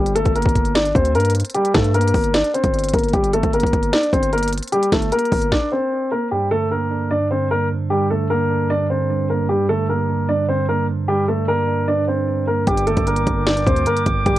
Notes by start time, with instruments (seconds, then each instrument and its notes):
Already playing: 808-style bass G1, grand piano G3 G4
0.06 closed hi-hat
0.15 grand piano A3 A4, closed hi-hat
0.25 808-style bass G1, kick, closed hi-hat
0.35 grand piano A#3 A#4, closed hi-hat
0.42 808-style bass G1, kick, closed hi-hat
0.49 closed hi-hat
0.55 kick, closed hi-hat
0.65 closed hi-hat
0.75 grand piano D4 D5, snare, closed hi-hat
0.85 closed hi-hat
0.95 808-style bass D2, grand piano C4 C5, kick, closed hi-hat
1.05 closed hi-hat
1.15 808-style bass G2, grand piano A#3 A#4, closed hi-hat
1.20 closed hi-hat
1.25 closed hi-hat
1.30 closed hi-hat
1.35 closed hi-hat
1.40 closed hi-hat
1.45 closed hi-hat
1.50 closed hi-hat
1.54 grand piano G3 G4, closed hi-hat
1.65 closed hi-hat
1.74 808-style bass G2, grand piano A3 A4, kick, snare, closed hi-hat
1.84 closed hi-hat
1.94 grand piano A#3 A#4, closed hi-hat
2.01 closed hi-hat
2.08 closed hi-hat
2.14 808-style bass G1, kick, open hi-hat
2.24 closed hi-hat
2.34 grand piano D4 D5, snare, closed hi-hat
2.44 closed hi-hat
2.54 grand piano C4 C5, closed hi-hat
2.64 808-style bass G1, kick, closed hi-hat
2.74 closed hi-hat
2.79 closed hi-hat
2.84 closed hi-hat
2.89 closed hi-hat
2.94 808-style bass G1, grand piano A#3 A#4, kick, closed hi-hat
2.99 closed hi-hat
3.04 closed hi-hat
3.09 closed hi-hat
3.13 808-style bass G1, grand piano G3 G4, kick, closed hi-hat
3.24 closed hi-hat
3.33 grand piano A3 A4, closed hi-hat
3.43 808-style bass G1, kick, closed hi-hat
3.53 grand piano A#3 A#4, closed hi-hat
3.60 808-style bass G1, kick, closed hi-hat
3.67 closed hi-hat
3.73 808-style bass G1, kick, closed hi-hat
3.83 closed hi-hat
3.93 grand piano D4 D5, snare, closed hi-hat
4.03 closed hi-hat
4.13 808-style bass G1, grand piano C4 C5, kick, closed hi-hat
4.23 closed hi-hat
4.33 grand piano A#3 A#4, closed hi-hat
4.38 closed hi-hat
4.43 closed hi-hat
4.48 closed hi-hat
4.53 closed hi-hat
4.58 closed hi-hat
4.63 closed hi-hat
4.68 closed hi-hat
4.72 grand piano G3 G4, closed hi-hat
4.83 closed hi-hat
4.92 808-style bass G1, grand piano A3 A4, kick, snare, closed hi-hat
5.02 closed hi-hat
5.12 grand piano A#3 A#4, closed hi-hat
5.19 closed hi-hat
5.25 closed hi-hat
5.32 808-style bass G1, kick, open hi-hat
5.42 closed hi-hat
5.52 grand piano D4 D5, kick, snare
5.72 grand piano C4 C5
6.12 grand piano A#3 A#4
6.31 tine electric piano G2, grand piano G3 G4
6.51 tine electric piano D3, grand piano A3 A4
6.71 grand piano A#3 A#4, tine electric piano D4
6.91 tine electric piano D4
7.11 tine electric piano G2, grand piano D4 D5
7.30 tine electric piano D3, grand piano C4 C5
7.51 tine electric piano G2, grand piano A#3 A#4
7.90 tine electric piano G2, grand piano G3 G4
8.10 tine electric piano D3, grand piano A3 A4
8.30 grand piano A#3 A#4, tine electric piano D4
8.50 tine electric piano D4
8.69 tine electric piano G2, grand piano D4 D5
8.90 tine electric piano D3, grand piano C4 C5
9.10 tine electric piano G2
9.30 grand piano A#3 A#4
9.49 tine electric piano G2, grand piano G3 G4
9.69 tine electric piano D3, grand piano A3 A4
9.89 grand piano A#3 A#4, tine electric piano D4
10.09 tine electric piano D4
10.28 tine electric piano G2, grand piano D4 D5
10.48 tine electric piano D3, grand piano C4 C5
10.68 tine electric piano G2, grand piano A#3 A#4
11.08 tine electric piano G2, grand piano G3 G4
11.28 tine electric piano D3, grand piano A3 A4
11.48 grand piano A#3 A#4, tine electric piano D4
11.68 tine electric piano D4
11.87 tine electric piano G2, grand piano D4 D5
12.07 tine electric piano D3, grand piano C4 C5
12.28 tine electric piano G2
12.47 grand piano A#3 A#4
12.67 808-style bass G1, tine electric piano G2, grand piano G3 G4, woodwind section A#4 D5 G5 D6, kick, closed hi-hat
12.77 closed hi-hat
12.87 tine electric piano D3, grand piano A3 A4, closed hi-hat
12.97 808-style bass G1, kick, closed hi-hat
13.07 grand piano A#3 A#4, tine electric piano D4, closed hi-hat
13.16 closed hi-hat
13.27 808-style bass G1, tine electric piano D4, kick, closed hi-hat
13.46 tine electric piano G2, grand piano D4 D5, snare, closed hi-hat
13.57 closed hi-hat
13.66 808-style bass D2, tine electric piano D3, grand piano C4 C5, kick, closed hi-hat
13.76 closed hi-hat
13.86 tine electric piano G2, grand piano A#3 A#4, closed hi-hat
13.97 closed hi-hat
14.06 808-style bass G1, kick, closed hi-hat
14.26 808-style bass G1, tine electric piano G2, grand piano G3 G4, kick, closed hi-hat